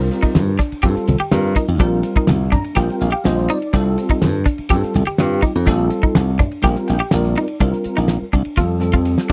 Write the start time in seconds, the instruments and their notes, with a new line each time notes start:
Already playing: tine electric piano G3 C4 F4 A#4
0.11 hi-hat pedal, ride
0.23 clean electric guitar D#4, muted slap bass stroke, kick, ride
0.35 slap bass G2, snare, hi-hat pedal, ride, high conga
0.59 clean electric guitar D4, kick, snare, hi-hat pedal, ride
0.72 muted slap bass stroke, ride
0.83 slap bass G2, tine electric piano G3 C4 F4 A4, clean electric guitar G4, kick, hi-hat pedal, ride
0.96 muted slap bass stroke, snare
1.07 slap bass C2, hi-hat pedal, ride, muted conga, high conga
1.20 clean electric guitar G4, ride
1.31 slap bass G2, tine electric piano G3 C4 F4 A#4, snare, hi-hat pedal, ride, high conga
1.56 clean electric guitar D#4, kick, hi-hat pedal, ride, muted conga
1.68 slap bass F2
1.79 slap bass A#1, tine electric piano G3 C4 F4 A#4, clean electric guitar D4, kick, hi-hat pedal, ride
2.03 hi-hat pedal, ride
2.16 clean electric guitar D#4, muted slap bass stroke, kick
2.27 slap bass C2, snare, hi-hat pedal, ride, high conga
2.52 clean electric guitar D4, tine electric piano A#5, kick, hi-hat pedal, ride, low conga
2.64 ride
2.75 slap bass A#1, tine electric piano G3 C4 F4 A#4 G5, clean electric guitar G4, kick, hi-hat pedal, ride
2.89 snare
3.01 slap bass A#1, tine electric piano F5, hi-hat pedal, ride, muted conga
3.12 clean electric guitar G4, ride
3.24 slap bass A#1, tine electric piano G3 C4 F4 C5 D#5, snare, hi-hat pedal, ride, high conga
3.38 snare
3.49 clean electric guitar D#4, tine electric piano D5, hi-hat pedal, ride
3.62 ride
3.73 slap bass C2, tine electric piano G3 C4 F4 A4, clean electric guitar D4, kick, hi-hat pedal, ride, muted conga
3.98 hi-hat pedal, ride
4.09 clean electric guitar D#4, muted slap bass stroke, kick, ride
4.22 slap bass G2, snare, hi-hat pedal, ride, high conga
4.46 clean electric guitar D4, kick, hi-hat pedal, ride
4.58 muted slap bass stroke, ride
4.69 slap bass G2, tine electric piano G3 C4 F4 A4, clean electric guitar G4, kick, hi-hat pedal, ride
4.83 muted slap bass stroke, snare
4.94 slap bass C2, hi-hat pedal, ride, muted conga, high conga
5.06 clean electric guitar G4, muted slap bass stroke, ride
5.18 slap bass G2, tine electric piano G3 C4 F4 G4, snare, hi-hat pedal, ride, high conga
5.42 clean electric guitar D#4, kick, hi-hat pedal, ride, muted conga
5.55 slap bass F2
5.66 slap bass A#1, tine electric piano G3 C4 F4 A4, clean electric guitar D4, kick, hi-hat pedal, ride
5.90 hi-hat pedal, ride
6.03 clean electric guitar D#4, muted slap bass stroke, kick
6.15 slap bass C2, snare, hi-hat pedal, ride, high conga
6.39 clean electric guitar D4, kick, hi-hat pedal, ride, low conga
6.51 ride
6.62 slap bass A#1, tine electric piano G3 C4 F4 A#4, clean electric guitar G4, kick, hi-hat pedal, ride, muted conga
6.75 snare
6.88 slap bass A#1, tine electric piano G5, hi-hat pedal, ride, muted conga
6.99 clean electric guitar G4, ride
7.11 slap bass A#1, tine electric piano G3 C4 F4 A#4 D5, snare, hi-hat pedal, ride, high conga
7.24 snare
7.35 clean electric guitar D#4, hi-hat pedal, ride, muted conga
7.48 ride
7.60 slap bass C2, tine electric piano G3 C4 F4 A#4, clean electric guitar D4, kick, hi-hat pedal, ride
7.73 snare
7.84 muted slap bass stroke, hi-hat pedal, ride
7.96 slap bass A#1, clean electric guitar D#4, ride
8.08 snare, hi-hat pedal, ride
8.33 slap bass C2, clean electric guitar D4, kick, hi-hat pedal, ride
8.45 muted slap bass stroke, ride
8.57 slap bass F2, tine electric piano G3 C4 F4 A4, clean electric guitar F4, kick, hi-hat pedal, ride
8.80 tine electric piano G3 C4 F4 A4, snare, hi-hat pedal, ride
8.93 slap bass F2, clean electric guitar F4, kick, ride
9.05 hi-hat pedal, ride
9.18 snare
9.29 tine electric piano G3